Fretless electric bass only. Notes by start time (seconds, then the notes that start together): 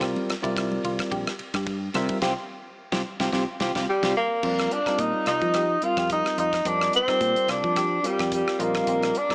0.01 C2
0.28 muted fretless electric bass stroke
0.44 C2
0.84 C2
1.12 A#1
1.39 muted fretless electric bass stroke
1.54 G2
1.94 C3
2.22 C2
2.92 C2
3.20 C2
3.32 C2
3.60 C2
3.75 C2
4.03 C2
4.43 F2
4.86 muted fretless electric bass stroke
4.99 A#2
5.14 muted fretless electric bass stroke
5.27 C2
5.42 F3
5.82 muted fretless electric bass stroke
5.97 F2
6.38 F2
6.65 F2
7.08 muted fretless electric bass stroke
7.21 A#2
7.35 muted fretless electric bass stroke
7.48 C2
7.64 F3
8.04 muted fretless electric bass stroke
8.19 F2
8.60 A#1
8.87 A#1
9.30 muted fretless electric bass stroke